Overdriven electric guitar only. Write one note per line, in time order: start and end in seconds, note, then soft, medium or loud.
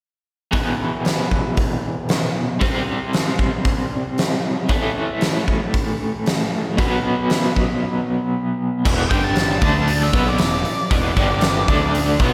0.51 2.59 E2 medium
0.51 2.60 B2 medium
0.51 2.61 E3 medium
2.60 4.67 C3 medium
2.60 4.68 G3 medium
2.60 4.69 C4 loud
4.69 6.75 A2 medium
4.69 6.76 E3 medium
4.69 6.77 A3 medium
6.77 8.83 B2 medium
6.77 8.84 F#3 medium
6.77 8.84 B3 medium
8.85 9.10 E2 medium
8.85 9.10 B2 loud
8.85 9.10 E3 loud
9.10 9.61 G2 medium
9.10 9.61 D3 medium
9.10 9.62 G3 medium
9.62 10.13 D3 medium
9.62 10.13 A3 medium
9.62 10.14 D4 medium
10.14 10.39 B2 medium
10.14 10.39 F#3 medium
10.14 10.39 B3 loud
10.41 10.61 E2 medium
10.41 10.61 B2 medium
10.92 11.18 E2 medium
10.92 11.18 B2 loud
10.92 11.19 E3 loud
11.18 11.68 G2 medium
11.18 11.68 D3 medium
11.18 11.69 G3 medium
11.69 12.20 D3 medium
11.69 12.20 A3 medium
11.69 12.20 D4 loud
12.20 12.33 B2 medium
12.20 12.33 F#3 medium
12.20 12.33 B3 loud